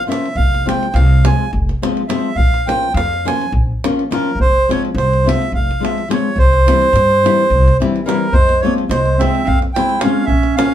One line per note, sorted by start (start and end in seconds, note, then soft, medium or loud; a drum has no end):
0.07 0.26 F3 medium
0.07 0.26 A#3 medium
0.07 0.27 C#4 medium
0.07 0.27 F4 medium
0.07 0.36 E5 medium
0.12 davul high medium
0.26 davul high soft
0.35 0.70 F1 medium
0.35 0.67 F5 medium
0.35 davul low loud
0.55 davul high soft
0.66 0.85 F3 medium
0.66 0.85 G#3 medium
0.66 0.85 C4 soft
0.66 0.85 F4 medium
0.66 0.95 G5 medium
0.66 davul high medium
0.83 davul high soft
0.94 1.29 C2 loud
0.94 1.26 F5 medium
0.94 davul high medium
1.24 1.43 F3 medium
1.24 1.43 G#3 medium
1.24 1.44 C4 soft
1.24 1.44 F4 medium
1.24 1.51 G#5 medium
1.24 davul high medium
1.53 1.70 F1 medium
1.53 davul low medium
1.69 davul high soft
1.82 2.01 F3 medium
1.82 2.01 G#3 medium
1.82 2.02 C4 medium
1.82 2.02 F4 medium
1.82 davul high medium
1.97 davul high soft
2.08 2.28 F3 medium
2.08 2.29 G#3 medium
2.08 2.29 C4 medium
2.08 2.29 F4 medium
2.08 2.37 E5 medium
2.08 davul high medium
2.35 2.71 A#1 medium
2.35 2.68 F5 loud
2.35 davul low loud
2.54 davul high soft
2.67 2.86 F3 medium
2.67 2.87 A#3 medium
2.67 2.87 C#4 medium
2.67 2.87 F4 medium
2.67 2.93 G5 medium
2.67 davul high medium
2.83 davul high soft
2.94 3.29 F2 loud
2.94 3.27 F5 loud
2.94 davul high medium
3.13 davul high soft
3.25 3.45 F3 medium
3.25 3.45 A#3 soft
3.25 3.45 C#4 medium
3.25 3.45 F4 medium
3.25 3.52 G#5 medium
3.25 davul high medium
3.41 davul high soft
3.52 3.70 A#1 medium
3.52 davul low medium
3.84 4.02 F3 medium
3.84 4.02 A#3 medium
3.84 4.03 C#4 medium
3.84 4.03 F4 medium
3.84 davul high medium
3.99 davul high soft
4.11 4.29 F3 medium
4.11 4.29 A#3 medium
4.11 4.30 C#4 medium
4.11 4.30 F4 medium
4.11 4.39 A#4 medium
4.11 davul high medium
4.35 4.71 F1 medium
4.40 4.70 C5 loud
4.40 davul low loud
4.69 4.87 F3 medium
4.69 4.87 G#3 medium
4.69 4.88 C4 medium
4.69 4.88 F4 medium
4.69 4.83 C#5 medium
4.69 davul high medium
4.85 davul high soft
4.95 5.30 C2 medium
4.95 5.27 C5 medium
4.95 davul high soft
5.13 davul high soft
5.24 5.44 F3 medium
5.24 5.45 G#3 medium
5.24 5.45 C4 soft
5.24 5.46 F4 medium
5.24 5.52 E5 medium
5.29 davul high medium
5.42 davul high soft
5.52 5.70 F1 medium
5.52 5.84 F5 medium
5.52 davul low medium
5.71 davul high soft
5.80 6.00 F3 medium
5.80 6.00 G#3 medium
5.80 6.01 C4 soft
5.80 6.01 F4 medium
5.85 6.09 E5 medium
5.85 davul high medium
5.98 davul high soft
6.08 6.27 F3 medium
6.08 6.28 G#3 medium
6.08 6.28 C4 medium
6.08 6.29 F4 medium
6.08 6.38 C#5 medium
6.08 davul high medium
6.36 6.70 C2 medium
6.36 7.77 C5 loud
6.36 davul low medium
6.53 davul high soft
6.66 6.85 E3 medium
6.66 6.86 G3 medium
6.66 6.86 C4 medium
6.66 6.87 E4 medium
6.66 davul high medium
6.82 davul high soft
6.93 7.28 G2 loud
6.93 davul high medium
7.10 davul high soft
7.23 7.42 E3 medium
7.23 7.43 G3 medium
7.23 7.43 C4 medium
7.23 7.44 E4 medium
7.23 davul high medium
7.40 davul high soft
7.50 7.68 C2 medium
7.54 davul low medium
7.68 davul high soft
7.80 7.99 E3 medium
7.80 7.99 G3 medium
7.80 7.99 C4 medium
7.80 7.99 E4 medium
7.80 davul high soft
7.96 davul high soft
8.06 8.25 E3 medium
8.06 8.25 G3 medium
8.06 8.32 G3 medium
8.06 8.26 C4 medium
8.06 8.26 E4 medium
8.06 8.34 A#4 medium
8.06 davul high medium
8.33 8.67 F2 medium
8.33 8.61 G#3 medium
8.33 8.61 C5 loud
8.33 davul low loud
8.49 davul high soft
8.61 8.82 F3 medium
8.61 8.82 G#3 medium
8.61 8.77 A#3 medium
8.61 8.83 C4 medium
8.61 8.83 F4 medium
8.61 8.74 C#5 medium
8.78 davul high soft
8.88 9.24 C2 medium
8.88 9.17 G#3 medium
8.88 9.21 C5 medium
8.88 davul high medium
9.06 davul high soft
9.18 9.39 F3 medium
9.18 9.40 G#3 medium
9.18 9.44 C4 medium
9.18 9.40 C4 medium
9.18 9.40 F4 medium
9.18 9.48 E5 medium
9.18 davul high medium
9.35 davul high soft
9.45 9.64 F2 medium
9.45 9.58 C4 medium
9.45 9.59 F5 loud
9.45 davul low medium
9.62 davul high soft
9.74 9.95 F3 medium
9.74 9.95 G#3 soft
9.74 9.95 C4 medium
9.74 10.01 E4 medium
9.74 9.95 F4 medium
9.74 10.00 G5 medium
9.74 davul high medium
9.89 davul high soft
9.99 10.22 F3 medium
9.99 10.26 C#4 medium
9.99 10.26 F5 medium
9.99 davul high medium
10.04 10.22 G#3 medium
10.04 10.22 C4 medium
10.04 10.23 F4 medium
10.25 10.63 A#1 medium
10.25 10.56 C#4 medium
10.25 10.55 E5 medium
10.25 davul low medium
10.43 davul high soft
10.56 10.74 F3 medium
10.56 10.74 A#3 medium
10.56 10.74 C#4 medium
10.56 10.74 F4 medium
10.56 10.74 F5 loud
10.56 davul high medium